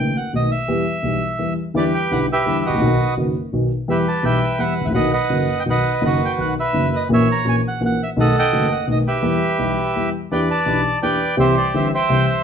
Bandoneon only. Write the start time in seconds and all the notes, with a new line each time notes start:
Already playing: G5
0.17 F#5
0.36 D#5
0.51 E5
1.77 G4 B4 D5
1.94 G5
2.12 F#5
2.32 G4 B4 E5
2.61 E5
2.66 F#4 B4 D#5
3.90 G4 B4 E5
4.08 A5
4.25 B4 E5 G5
4.59 B4 F#5
4.85 E5
4.94 B4 D#5 F#5
5.13 B4 D#5 F#5
5.60 G5
5.70 B4 D#5 F#5
6.05 F#4 B4 D#5
6.25 G5
6.41 F#5
6.60 B4 E5
6.96 D#5
7.13 C#5 E5
7.32 A#5
7.49 G#5
7.68 F#5
7.86 F#5
8.03 E5
8.20 A4 D#5 F#5
8.39 D#5 G5
8.72 F#5
8.92 D#5
9.07 G4 B4 E5
10.32 B4 D5 G5
10.50 D5 A5
11.03 B4 D5 G5
11.40 G4 C5 E5
11.57 D5
11.76 E5
11.95 C5 E5 G5